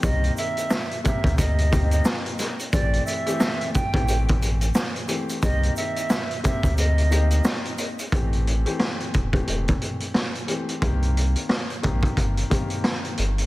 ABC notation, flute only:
X:1
M:4/4
L:1/16
Q:"Swing 16ths" 1/4=89
K:C
V:1 name="Flute"
_e2 =e4 e2 _e3 e z4 | d2 e4 g3 z6 z | _e2 =e4 e2 _e3 e z4 | z16 |
z16 |]